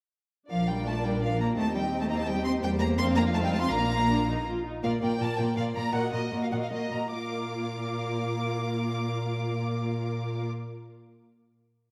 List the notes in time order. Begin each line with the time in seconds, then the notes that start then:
0.50 A#1 F3 D4 F4 A#4 D5 F5
0.68 G3 G5
0.86 A3 A5
1.04 G3 G5
1.22 F3 F5
1.39 A#3 A#5
1.58 D#2 A3 C4 D#4 G4 D#5 A5
1.75 G3 G5
2.01 A3 A5
2.10 A#3 A#5
2.18 A3 A5
2.27 G3 G5
2.45 C4 C6
2.63 E2 G3 A#3 G4 C5 G5
2.80 A#3 A#5
2.98 F2 C4 D4 F4 F5 C6
3.15 A#3 A#5
3.33 A3 C4 D#4 A5
3.42 G3 G5
3.52 A3 A5
3.61 C4 C6
3.70 A#1 A#3 D4 A#5
4.08 D4
4.28 D#4
4.46 F4
4.65 D#4
4.83 A#2 A#3 F4 A#4 D5 F5
5.01 A#2 A#3 F4 A#4 D5 G5
5.19 A#2 A#3 F4 A#4 D5 A5
5.38 A#2 A#3 F4 A#4 D5 G5
5.57 A#2 A#3 F4 A#4 D5 F5
5.75 A#2 A#3 F4 A#4 D5 A#5
5.93 A#2 A#3 F#4 A#4 D#5 F#5
6.12 A#2 A#3 F#4 A#4 D#5
6.31 A#2 A#3 F#4 A#4 D#5
6.43 F5
6.50 A#2 A#3 F#4 A#4 D#5 F#5
6.62 F5
6.71 A#2 A#3 F#4 A#4 D#5
6.92 A#2 A#3 F#4 A#4 D#5 A#5
7.13 A#2 A#3 F4 A#4 F5 D6